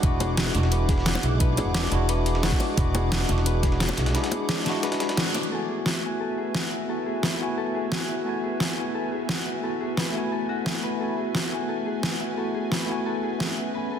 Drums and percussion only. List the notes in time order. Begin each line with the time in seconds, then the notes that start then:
0.03 kick, closed hi-hat
0.20 closed hi-hat, high bongo
0.37 snare, closed hi-hat
0.46 snare
0.55 snare, closed hi-hat
0.63 snare
0.72 closed hi-hat
0.89 kick, snare, closed hi-hat
0.98 snare
1.06 snare, closed hi-hat
1.15 high bongo
1.23 closed hi-hat
1.40 kick, closed hi-hat
1.57 closed hi-hat, high bongo
1.74 snare, closed hi-hat
1.84 snare
1.92 closed hi-hat
2.09 closed hi-hat
2.26 closed hi-hat
2.35 snare
2.43 snare, closed hi-hat
2.52 kick
2.60 closed hi-hat, open hi-hat, high bongo
2.77 kick, closed hi-hat
2.95 closed hi-hat, high bongo
3.12 snare, closed hi-hat
3.21 snare
3.29 snare, closed hi-hat
3.38 snare
3.46 closed hi-hat
3.63 kick, snare, closed hi-hat
3.72 snare
3.80 snare, closed hi-hat
3.89 high bongo
3.97 snare, closed hi-hat
4.06 snare, closed hi-hat
4.15 snare, closed hi-hat
4.24 snare, closed hi-hat
4.31 closed hi-hat, high bongo
4.49 snare, closed hi-hat
4.58 snare
4.66 snare, closed hi-hat
4.83 snare, closed hi-hat
4.92 snare, closed hi-hat
5.00 snare, closed hi-hat
5.09 snare, closed hi-hat
5.17 snare, closed hi-hat
5.34 snare, closed hi-hat, open hi-hat, high bongo
5.43 closed hi-hat
5.86 snare
6.55 snare
7.23 snare
7.92 snare
8.60 snare
9.29 snare
9.97 snare
10.66 snare
11.35 snare
12.03 snare
12.72 snare
13.40 snare